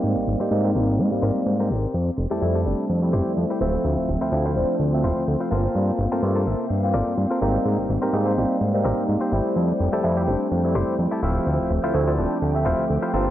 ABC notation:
X:1
M:4/4
L:1/16
Q:"Swing 16ths" 1/4=126
K:Dm
V:1 name="String machine"
[Cd]16 | [Cc]16- | [Cc]16- | [Cc]16- |
[Cc]16 | [Gg]16- | [Gg]16 |]
V:2 name="Clean electric guitar"
[CGB]2 z [CGc] z [CGB]3 z2 [CGB]2 z [CGB]3 | z3 [EGA] z [EGA]3 z2 [EGc]2 z [EGc] [EFc]2- | [EFc]2 z [EFc] z [EFc]3 z2 [EFc]2 z [EFc] [FABc]2- | [FABc]2 z [FABc] z [FABc]3 z2 [FABd]2 z [FABc] [CGB]2- |
[CGB]2 z [CGB] z [CGc]3 z2 [CGB]2 z [CGc]3 | z3 [EGA] z [EGc]3 z2 [EGc]2 z [EGA] [EFc]2- | [EFc]2 z [EFc] z [EFd]3 z2 [EFc]2 z [EFc] [FABc]2 |]
V:3 name="Tine electric piano"
[G,B,C_E]3 [G,B,CE] [G,B,CE] z [G,B,CE]3 [G,B,CE]4- [G,B,CE] z2 | z3 [G,A,CE] [G,A,CE] z [G,A,CD]3 [G,A,CE]4- [G,A,CE] [F,A,Ce]2- | [F,A,Ce]3 [F,A,CE] [F,A,CE] z [F,A,CD]3 [F,A,Ce]4- [F,A,Ce] [B,CF]2- | [B,CF]3 [A,B,CF] [A,B,CF] z [B,Ce]3 [B,CF]4- [B,CF] [G,B,C_E]2- |
[G,B,C_E]3 [G,B,CE] [G,B,CE] z [G,B,CE]3 [G,B,CE]4- [G,B,CE] [G,A,C=E]2- | [G,A,CE]3 [G,A,CE] [G,A,CE] z [G,A,CD]3 [G,A,CE]4- [G,A,CE] [F,A,Ce]2- | [F,A,Ce]3 [F,A,CE] [F,A,CE] z [F,A,CD]3 [F,A,Ce]4- [F,A,Ce] [B,CF]2 |]
V:4 name="Analog synth bass" clef=bass
_A,, _A,,, A,,, A,, A,,2 A,,,2 A,, A,,, A,,, A,, A,,2 A,,, z | F,, z F,,, F,, F,,2 F,,, z F,,2 F,,, F,, F,, z D,,, z | D,, D,,, D,,, D,, D,,2 D,,, z D,,2 D,,, D,, D,, z G,,, z | G,, z G,,, G,, G,,2 G,,, z G,,2 G,,, G,, G,, z _A,,, z |
_A,, _A,,, A,,, A,, A,,2 A,,, z A,,2 A,,, A,, A,, z A,,, z | F,, z F,,, F,, F,,2 F,,, z F,,2 F,,, F,, F,, z D,,, z | D,, D,,, D,,, D,, D,,2 D,,, z D,,2 D,,, D,, D,, z G,,, z |]